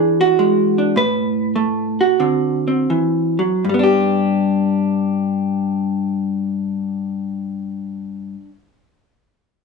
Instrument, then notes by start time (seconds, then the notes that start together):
hollow-body jazz guitar
Already playing: E3 D4 G#4
0.21 F#4
0.39 G#3
0.78 D4
0.96 A2 B4
1.56 A3
2.01 F#4
2.20 D3 C4
2.68 C4
2.90 E3
3.39 F#3
3.65 G2
3.69 G3
3.74 B3
3.79 D4
3.83 G4